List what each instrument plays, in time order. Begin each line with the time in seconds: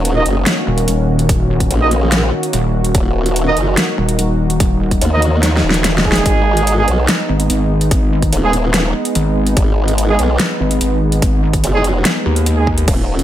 Already playing: wobble bass D#1, supersaw synth D#3 A#3 C#4 F#4
0.05 closed hi-hat
0.16 brass ensemble D#4 A#4 D#5
0.26 wobble bass F#1, closed hi-hat
0.46 snare, closed hi-hat
0.67 wobble bass D#1
0.78 closed hi-hat
0.88 wobble bass D#1, closed hi-hat
1.19 closed hi-hat
1.29 wobble bass D#1, kick, closed hi-hat
1.60 kick, closed hi-hat
1.71 wobble bass A#1, closed hi-hat
1.81 brass ensemble D#4 A#4 D#5
1.91 closed hi-hat
2.12 snare, closed hi-hat
2.43 closed hi-hat
2.53 wobble bass D#1, closed hi-hat
2.84 closed hi-hat
2.95 wobble bass D#1, supersaw synth D#4, kick, closed hi-hat
3.26 closed hi-hat
3.36 closed hi-hat
3.47 brass ensemble D#4 A#4 D#5
3.57 wobble bass F#1, closed hi-hat
3.77 snare, closed hi-hat
3.98 wobble bass D#1
4.09 closed hi-hat
4.19 wobble bass D#1, closed hi-hat
4.50 closed hi-hat
4.60 wobble bass D#1, kick, closed hi-hat
4.91 kick, closed hi-hat
5.02 wobble bass D#2, closed hi-hat
5.12 brass ensemble D#4 A#4 D#5
5.22 closed hi-hat
5.43 snare, closed hi-hat
5.57 snare
5.64 wobble bass D#1
5.70 snare, closed hi-hat
5.84 snare, closed hi-hat
5.98 snare
6.05 brass ensemble G#3 D#4 G#4, kick
6.12 snare, closed hi-hat
6.26 wobble bass G#1, supersaw synth G#3 B3, kick, closed hi-hat
6.57 closed hi-hat
6.67 closed hi-hat
6.78 brass ensemble G#3 D#4 G#4
6.88 wobble bass B1, closed hi-hat
7.08 snare, closed hi-hat
7.29 wobble bass G#1
7.40 closed hi-hat
7.50 wobble bass G#1, closed hi-hat
7.81 closed hi-hat
7.91 wobble bass G#1, kick, closed hi-hat
8.22 kick, closed hi-hat
8.33 wobble bass D#1, closed hi-hat
8.43 brass ensemble G#3 D#4 G#4
8.53 closed hi-hat
8.74 snare, closed hi-hat
9.05 closed hi-hat
9.15 wobble bass G#1, closed hi-hat
9.47 closed hi-hat
9.57 wobble bass G#1, kick, closed hi-hat
9.88 closed hi-hat
9.98 closed hi-hat
10.09 brass ensemble G#3 D#4 G#4
10.19 wobble bass B1, closed hi-hat
10.40 snare, closed hi-hat
10.60 wobble bass G#1
10.71 closed hi-hat
10.81 wobble bass G#1, closed hi-hat
11.12 closed hi-hat
11.22 wobble bass G#1, kick, closed hi-hat
11.53 kick, closed hi-hat
11.64 wobble bass F#1, closed hi-hat
11.74 brass ensemble G#3 D#4 G#4
11.84 closed hi-hat
12.05 snare, closed hi-hat
12.26 wobble bass D#2
12.36 closed hi-hat
12.46 closed hi-hat
12.57 brass ensemble G#3 D#4 G#4
12.67 kick
12.78 closed hi-hat
12.88 wobble bass D#1, supersaw synth D#3 A#3 C#4 F#4, kick, closed hi-hat, crash
13.19 closed hi-hat